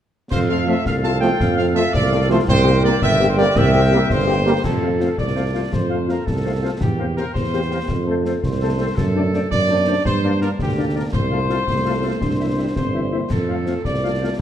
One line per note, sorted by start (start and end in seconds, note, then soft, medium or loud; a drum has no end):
0.31 0.77 F2 medium
0.31 0.82 A4 medium
0.31 0.39 C5 loud
0.31 0.82 F5 medium
0.31 concert bass drum loud
0.31 snare medium
0.31 crash medium
0.49 0.56 A3 medium
0.49 0.56 C4 medium
0.49 0.56 F4 medium
0.49 0.67 F5 medium
0.66 0.74 F3 medium
0.66 0.73 A3 medium
0.66 0.75 A3 medium
0.66 0.74 C4 medium
0.66 0.74 F4 medium
0.66 0.86 E5 medium
0.86 1.31 C2 medium
0.86 2.44 A4 medium
0.86 0.94 F5 medium
0.86 2.44 F5 medium
0.86 concert bass drum medium
0.86 snare medium
1.04 1.11 A3 medium
1.04 1.10 C4 medium
1.04 1.10 F4 medium
1.04 1.21 A5 loud
1.04 snare medium
1.21 1.28 F3 medium
1.21 1.28 A3 medium
1.21 1.29 A3 medium
1.21 1.29 C4 medium
1.21 1.29 F4 medium
1.21 1.55 G5 medium
1.21 snare medium
1.40 1.85 F2 medium
1.40 concert bass drum medium
1.40 snare medium
1.57 1.65 A3 medium
1.57 1.65 C4 medium
1.57 1.65 F4 medium
1.57 1.65 F5 loud
1.57 snare medium
1.75 1.81 F3 medium
1.75 1.81 A3 medium
1.75 1.83 A3 medium
1.75 1.83 C4 medium
1.75 1.83 F4 medium
1.75 1.93 E5 loud
1.75 snare medium
1.93 2.39 C2 medium
1.93 2.27 D5 loud
1.93 concert bass drum medium
1.93 snare medium
2.12 2.18 A3 medium
2.12 2.19 C4 medium
2.12 2.18 F4 medium
2.30 2.36 F3 medium
2.30 2.36 A3 medium
2.30 2.37 A3 medium
2.30 2.36 C4 medium
2.30 2.36 F4 medium
2.30 2.39 C5 medium
2.47 2.93 C2 loud
2.47 3.01 A#4 medium
2.47 2.82 C5 loud
2.47 2.98 G5 medium
2.47 concert bass drum medium
2.47 snare medium
2.65 2.72 A#3 medium
2.65 2.72 C4 medium
2.65 2.71 G4 medium
2.83 2.91 G3 medium
2.83 2.90 A#3 medium
2.83 2.91 A#3 medium
2.83 2.90 C4 medium
2.83 2.90 G4 medium
2.83 3.01 D5 loud
3.02 3.47 G1 medium
3.02 3.53 A#4 medium
3.02 3.28 E5 loud
3.02 3.53 G5 medium
3.02 concert bass drum medium
3.02 snare medium
3.20 3.27 A#3 medium
3.20 3.26 C4 medium
3.20 3.27 G4 medium
3.20 snare medium
3.30 3.38 C5 medium
3.37 3.44 G3 medium
3.37 3.44 A#3 medium
3.37 3.45 A#3 medium
3.37 3.45 C4 medium
3.37 3.44 G4 medium
3.37 3.55 D5 loud
3.37 snare medium
3.55 4.01 C2 loud
3.55 4.43 A#4 medium
3.55 4.10 E5 loud
3.55 4.43 G5 medium
3.55 concert bass drum loud
3.55 snare medium
3.74 3.81 A#3 medium
3.74 3.80 C4 medium
3.74 3.80 G4 medium
3.74 snare medium
3.91 3.99 G3 medium
3.91 3.98 A#3 medium
3.91 3.99 A#3 medium
3.91 3.98 C4 medium
3.91 3.98 G4 medium
3.91 snare medium
4.10 4.55 G1 medium
4.10 4.61 C5 loud
4.10 concert bass drum medium
4.10 snare medium
4.27 4.34 A#3 medium
4.27 4.34 C4 medium
4.27 4.34 G4 medium
4.46 4.53 G3 medium
4.46 4.52 A#3 medium
4.46 4.53 A#3 medium
4.46 4.53 C4 medium
4.46 4.53 G4 medium
4.64 5.10 F2 medium
4.64 5.15 A4 medium
4.64 concert bass drum medium
4.64 snare medium
4.64 crash soft
4.82 4.89 A3 soft
4.82 4.89 C4 soft
4.82 4.89 F4 medium
4.82 4.89 C5 soft
4.82 4.89 F5 medium
5.00 5.07 A3 soft
5.00 5.07 C4 medium
5.00 5.07 F4 soft
5.00 5.07 C5 soft
5.00 5.08 F5 medium
5.00 snare medium
5.18 5.63 C2 medium
5.18 5.69 D5 medium
5.18 concert bass drum medium
5.18 snare medium
5.36 5.42 A3 soft
5.36 5.43 C4 soft
5.36 5.43 F4 medium
5.36 5.42 C5 soft
5.36 5.42 F5 medium
5.54 5.61 A3 soft
5.54 5.61 C4 medium
5.54 5.61 F4 soft
5.54 5.61 C5 medium
5.54 5.61 F5 soft
5.73 6.18 F2 medium
5.73 6.09 C5 medium
5.73 concert bass drum medium
5.73 snare medium
5.90 5.97 A3 medium
5.90 5.97 C4 soft
5.90 5.97 F4 medium
5.90 5.96 C5 soft
5.90 5.96 F5 soft
6.07 6.15 A3 soft
6.07 6.15 C4 soft
6.07 6.15 F4 soft
6.07 6.27 A#4 medium
6.07 6.14 C5 soft
6.07 6.14 F5 medium
6.07 snare soft
6.26 6.68 C2 medium
6.26 6.81 A4 medium
6.26 concert bass drum medium
6.26 snare medium
6.44 6.52 A3 soft
6.44 6.52 C4 medium
6.44 6.52 F4 soft
6.44 6.51 C5 soft
6.44 6.51 F5 soft
6.62 6.70 A3 medium
6.62 6.70 C4 medium
6.62 6.69 F4 soft
6.62 6.69 C5 medium
6.62 6.69 F5 medium
6.81 7.26 E2 medium
6.81 7.14 G4 medium
6.81 concert bass drum medium
6.81 snare medium
6.99 7.05 A#3 medium
6.99 7.05 C4 medium
6.99 7.05 G4 medium
6.99 7.05 A#4 medium
6.99 7.05 C5 medium
7.17 7.24 A#3 medium
7.17 7.24 C4 soft
7.17 7.24 G4 medium
7.17 7.34 A#4 medium
7.17 7.24 A#4 medium
7.17 7.24 C5 medium
7.17 snare soft
7.34 7.80 E2 medium
7.34 8.21 C5 medium
7.34 concert bass drum medium
7.34 snare medium
7.54 7.60 A#3 medium
7.54 7.60 C4 medium
7.54 7.61 G4 medium
7.54 7.60 A#4 soft
7.54 7.60 C5 medium
7.71 7.78 A#3 medium
7.71 7.78 C4 medium
7.71 7.78 G4 medium
7.71 7.79 A#4 medium
7.71 7.79 C5 medium
7.88 8.34 F2 medium
7.88 concert bass drum medium
7.88 snare medium
8.06 8.13 A3 medium
8.06 8.13 C4 medium
8.06 8.13 A4 medium
8.06 8.15 A4 medium
8.06 8.14 C5 medium
8.25 8.31 A3 soft
8.25 8.32 C4 medium
8.25 8.31 A4 soft
8.25 8.33 A4 medium
8.25 8.32 C5 medium
8.25 snare medium
8.43 8.88 C2 medium
8.43 8.94 C5 medium
8.43 concert bass drum medium
8.43 snare medium
8.62 8.69 A3 medium
8.62 8.68 C4 medium
8.62 8.68 A4 medium
8.62 8.69 A4 medium
8.62 8.68 C5 medium
8.79 8.86 A3 medium
8.79 8.85 C4 medium
8.79 8.86 A4 medium
8.79 8.86 C5 medium
8.96 9.42 F#2 medium
8.96 9.51 A4 loud
8.96 concert bass drum medium
8.96 snare medium
8.96 crash soft
9.15 9.22 A3 medium
9.15 9.22 C4 medium
9.15 9.22 D4 medium
9.15 9.22 C5 medium
9.15 9.22 D5 medium
9.34 9.41 A3 soft
9.34 9.40 C4 soft
9.34 9.41 D4 medium
9.34 9.40 C5 medium
9.34 9.41 D5 medium
9.34 snare medium
9.50 9.97 F#2 medium
9.50 10.01 D5 loud
9.50 concert bass drum medium
9.50 snare medium
9.70 9.76 A3 medium
9.70 9.77 C4 medium
9.70 9.76 D4 medium
9.70 9.77 C5 medium
9.70 9.77 D5 medium
9.88 9.94 A3 medium
9.88 9.95 C4 medium
9.88 9.94 D4 medium
9.88 9.95 C5 medium
9.88 9.95 D5 medium
10.05 10.51 G2 medium
10.05 10.39 C5 medium
10.05 concert bass drum medium
10.05 snare medium
10.23 10.30 A#3 medium
10.23 10.31 D4 medium
10.23 10.30 A#4 medium
10.23 10.30 D5 medium
10.41 10.48 A#3 medium
10.41 10.48 D4 medium
10.41 10.48 A#4 medium
10.41 10.50 A#4 medium
10.41 10.48 D5 medium
10.41 snare medium
10.59 11.05 D2 medium
10.59 10.94 G4 medium
10.59 concert bass drum medium
10.59 snare medium
10.77 10.85 A#3 medium
10.77 10.85 D4 medium
10.77 10.84 A#4 medium
10.77 10.84 D5 soft
10.95 11.03 A#3 medium
10.95 11.02 D4 medium
10.95 11.01 A#4 medium
10.95 11.04 A#4 medium
10.95 11.02 D5 medium
11.13 11.59 C2 medium
11.13 12.72 C5 loud
11.13 concert bass drum medium
11.13 snare medium
11.31 11.39 A3 medium
11.31 11.39 C4 medium
11.31 11.39 F4 medium
11.31 11.38 A4 soft
11.31 11.38 F5 medium
11.49 11.56 A3 soft
11.49 11.56 C4 soft
11.49 11.56 F4 soft
11.49 11.56 A4 medium
11.49 11.56 F5 medium
11.49 snare medium
11.67 12.13 C2 medium
11.67 12.22 A3 medium
11.67 concert bass drum medium
11.67 snare medium
11.86 11.93 A3 medium
11.86 11.92 C4 soft
11.86 11.92 F4 medium
11.86 11.92 A4 medium
11.86 11.93 F5 soft
12.02 12.09 A3 soft
12.02 12.09 C4 soft
12.02 12.09 F4 soft
12.02 12.10 A4 medium
12.02 12.10 F5 soft
12.21 12.67 C2 medium
12.21 12.78 D4 medium
12.21 concert bass drum medium
12.21 snare medium
12.39 12.46 G3 medium
12.39 12.46 C4 soft
12.39 12.46 E4 medium
12.39 12.47 C5 soft
12.39 12.46 E5 soft
12.58 12.65 G3 soft
12.58 12.65 C4 soft
12.58 12.65 E4 soft
12.58 12.65 C5 soft
12.58 12.65 E5 soft
12.76 13.18 G1 medium
12.76 13.13 C4 medium
12.76 13.27 C5 medium
12.76 concert bass drum medium
12.76 snare medium
12.94 13.01 G3 medium
12.94 13.01 C4 soft
12.94 13.01 E4 soft
12.94 13.01 C5 soft
12.94 13.01 E5 soft
13.11 13.19 G3 soft
13.11 13.30 A#3 soft
13.11 13.19 C4 soft
13.11 13.19 E4 soft
13.11 13.19 C5 soft
13.11 13.19 E5 soft
13.30 13.76 F2 medium
13.30 13.81 A4 medium
13.30 concert bass drum medium
13.30 snare medium
13.30 crash soft
13.48 13.55 A3 soft
13.48 13.56 C4 medium
13.48 13.55 F4 medium
13.48 13.55 C5 soft
13.48 13.55 F5 soft
13.66 13.74 A3 soft
13.66 13.73 C4 soft
13.66 13.74 F4 soft
13.66 13.73 C5 medium
13.66 13.73 F5 soft
13.66 snare medium
13.85 14.30 C2 medium
13.85 14.35 D5 medium
13.85 concert bass drum medium
13.85 snare medium
14.03 14.10 A3 soft
14.03 14.10 C4 medium
14.03 14.10 F4 medium
14.03 14.10 C5 soft
14.03 14.09 F5 soft
14.21 14.29 A3 medium
14.21 14.29 C4 soft
14.21 14.29 F4 medium
14.21 14.27 C5 soft
14.21 14.28 F5 soft